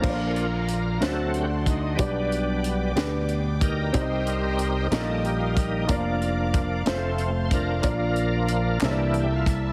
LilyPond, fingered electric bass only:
\new Staff \with { instrumentName = "Fingered electric bass" } { \clef bass \time 6/8 \key bes \major \tempo 4. = 62 bes,,4. d,4. | b,,4. d,4. | r4. bes,,4. | f,,4. f,,4. |
bes,,4. c,4. | }